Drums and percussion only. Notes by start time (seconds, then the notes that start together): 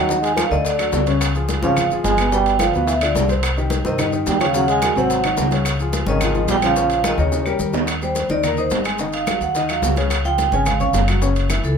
0.09 high bongo, maracas
0.23 high bongo, high conga, high timbale, maracas
0.37 high bongo, high conga, high timbale, low timbale, claves, maracas
0.51 high bongo, high conga, maracas
0.65 high bongo, high conga, high timbale, maracas
0.79 high bongo, high conga, high timbale, claves, maracas
0.93 high bongo, low bongo, high conga, low timbale, maracas
1.07 high conga, high timbale, maracas
1.21 high bongo, high conga, high timbale, claves, maracas
1.35 high bongo, high conga, maracas
1.49 high bongo, high conga, high timbale, low timbale, maracas
1.63 high bongo, high conga, maracas
1.76 high bongo, high conga, low conga, high timbale, claves, maracas
1.90 high bongo, high conga, maracas
2.04 high bongo, low bongo, high conga, high timbale, low timbale, maracas
2.17 high conga, high timbale, claves, maracas
2.31 high bongo, high conga, maracas
2.46 high bongo, high conga, high timbale, maracas
2.59 high bongo, high conga, high timbale, low timbale, claves, maracas
2.74 high bongo, high conga, maracas
2.87 high bongo, high conga, high timbale, maracas
3.01 high conga, high timbale, claves, maracas
3.15 high bongo, low bongo, high conga, low timbale, maracas
3.28 high conga, high timbale, maracas
3.43 high bongo, high timbale, claves, maracas
3.57 high bongo, high conga, maracas
3.70 high bongo, high conga, high timbale, low timbale, maracas
3.85 high bongo, high conga, maracas
3.98 high bongo, high conga, low conga, high timbale, claves, maracas
4.12 high bongo, high conga, maracas
4.26 high bongo, low bongo, high conga, high timbale, low timbale, maracas
4.40 high conga, high timbale, claves, maracas
4.54 high bongo, high conga, maracas
4.68 high bongo, high timbale, maracas
4.82 high bongo, high conga, high timbale, low timbale, claves, maracas
4.96 high bongo, high conga, maracas
5.10 high bongo, high timbale, maracas
5.24 high bongo, high timbale, claves, maracas
5.37 high bongo, low bongo, high conga, low timbale, maracas
5.51 high conga, high timbale, maracas
5.65 high bongo, high timbale, claves, maracas
5.79 high bongo, high conga, maracas
5.93 high bongo, high conga, high timbale, low timbale, maracas
6.07 high bongo, high conga, maracas
6.21 high bongo, high conga, low conga, high timbale, claves, maracas
6.35 high bongo, high conga, low conga, maracas
6.48 high bongo, low bongo, high conga, high timbale, low timbale, maracas
6.62 high conga, high timbale, claves, maracas
6.76 high bongo, maracas
6.90 high bongo, high conga, high timbale, maracas
7.04 high bongo, high conga, high timbale, low timbale, claves, maracas
7.18 high bongo, high conga, maracas
7.32 low bongo, high conga, high timbale, maracas
7.46 low bongo, high conga, claves, maracas
7.59 high conga, maracas
7.73 low bongo, high conga, low timbale, maracas
7.87 high bongo, high conga, high timbale, claves, maracas
8.02 high bongo, high conga, maracas
8.15 high bongo, high conga, high timbale, low timbale, maracas
8.29 high bongo, high conga, maracas
8.43 high bongo, high conga, low conga, high timbale, claves, maracas
8.57 high bongo, high conga, maracas
8.70 high bongo, low bongo, high conga, high timbale, low timbale, maracas
8.84 high timbale, claves, maracas
8.98 high bongo, high conga, maracas
9.13 high bongo, high conga, high timbale, maracas
9.27 high bongo, high conga, high timbale, low timbale, claves, maracas
9.41 high bongo, high conga, maracas
9.55 high bongo, high conga, high timbale, maracas
9.69 high bongo, high conga, high timbale, claves, maracas
9.82 high bongo, low bongo, high conga, low timbale, maracas
9.96 high conga, high timbale, maracas
10.10 high bongo, high conga, high timbale, claves, maracas
10.24 high bongo, high conga, maracas
10.38 high bongo, high conga, high timbale, low timbale, maracas
10.52 high bongo, high conga, maracas
10.66 high bongo, high conga, low conga, high timbale, claves, maracas
10.80 high bongo, high conga, low conga, maracas
10.94 high bongo, low bongo, high conga, high timbale, low timbale, maracas
11.08 high conga, high timbale, claves, maracas
11.22 high bongo, high conga, maracas
11.36 high bongo, high timbale, maracas
11.50 high bongo, high conga, high timbale, low timbale, claves, maracas
11.64 high bongo, high conga, maracas